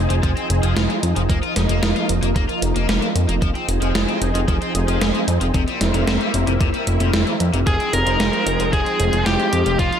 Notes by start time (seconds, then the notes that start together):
Already playing: F3 C4 D#4 G#4
0.10 F1 F3, closed hi-hat
0.23 F1 F3, kick, closed hi-hat
0.37 C4, closed hi-hat
0.50 F1, closed hi-hat
0.63 F1 F3, closed hi-hat
0.76 F1 F4, snare, closed hi-hat
0.90 G#3, closed hi-hat
1.03 F2, closed hi-hat
1.16 F1 F3, closed hi-hat
1.30 F1 A#3, kick, closed hi-hat
1.43 F4, closed hi-hat
1.56 F1, snare, closed hi-hat
1.69 F1 A#3, closed hi-hat
1.83 F1 A#4, snare, closed hi-hat
1.96 F4, closed hi-hat
2.09 F1, closed hi-hat
2.23 F1 A#3, closed hi-hat
2.36 F1 A#3, kick, closed hi-hat
2.49 F4, closed hi-hat
2.62 F1, closed hi-hat
2.76 F1 A#3, closed hi-hat
2.89 F1 A#4, snare, closed hi-hat
3.02 D4, closed hi-hat
3.15 F2, closed hi-hat
3.29 F1 A#3, closed hi-hat
3.42 F1 F3 C4 D#4 G#4, kick, closed hi-hat
3.55 C4, closed hi-hat
3.69 F1, closed hi-hat
3.82 F1 F3, closed hi-hat
3.95 F1 F4, snare, closed hi-hat
4.09 C4, closed hi-hat
4.22 F1, closed hi-hat
4.35 F1 F3, closed hi-hat
4.48 F1 F3, kick, closed hi-hat
4.62 C4, closed hi-hat
4.75 F1, closed hi-hat
4.88 F1 F3, closed hi-hat
5.01 F1 F4, snare, closed hi-hat
5.15 G#3, closed hi-hat
5.28 F2, closed hi-hat
5.41 F1 F3, closed hi-hat
5.54 F1 C3 A#3 E4, kick, closed hi-hat
5.68 G3, closed hi-hat
5.81 F1, snare, closed hi-hat
5.94 F1 C3, closed hi-hat
6.07 F1 C4, snare, closed hi-hat
6.21 G3, closed hi-hat
6.34 F1, closed hi-hat
6.47 F1 C3, closed hi-hat
6.61 F1 C3, kick, closed hi-hat
6.74 G3, closed hi-hat
6.87 F1, closed hi-hat
7.00 F1 C3, closed hi-hat
7.14 F1 C4, snare, closed hi-hat
7.27 E3, closed hi-hat
7.40 F2, closed hi-hat
7.54 F1 C3, closed hi-hat
7.67 F1 F3 G#3 C4 D#4 G#4, kick, closed hi-hat
7.80 C4, closed hi-hat
7.93 F1 A#4, closed hi-hat
8.07 F1 F3, closed hi-hat
8.20 F1 F4, snare, closed hi-hat
8.33 C4, closed hi-hat
8.46 F1, closed hi-hat
8.60 F1 F3, closed hi-hat
8.73 F1 F3 G#4, kick, closed hi-hat
8.86 C4, closed hi-hat
9.00 F1, closed hi-hat
9.13 F1 F3, closed hi-hat
9.26 F1 F4 G4, snare, closed hi-hat
9.40 G#3, closed hi-hat
9.53 F2, closed hi-hat
9.66 F1 F3, closed hi-hat
9.79 F1 A#3 F4, kick, closed hi-hat
9.93 F4, closed hi-hat